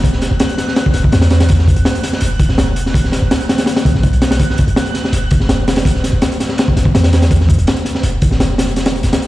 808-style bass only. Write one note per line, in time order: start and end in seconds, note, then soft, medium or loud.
0.00 0.30 E1 loud
0.31 0.39 E1 loud
0.94 1.03 E1 medium
1.13 1.75 E2 medium
1.76 1.84 E1 loud
2.22 2.48 E1 loud
2.49 2.57 E1 loud
2.58 3.21 E1 loud
3.22 3.30 E1 loud
3.85 3.94 B1 medium
3.95 4.03 A1 loud
4.04 4.39 B1 medium
4.67 4.75 E1 loud
5.12 5.39 E1 loud
5.40 5.48 E1 loud
5.49 6.11 E1 loud
6.13 6.21 E1 loud
6.76 6.85 G1 medium
6.95 7.57 E2 medium
7.58 7.66 E1 loud
8.03 8.29 E1 medium
8.31 8.39 E1 medium
8.40 9.02 E1 loud
9.04 9.12 E1 loud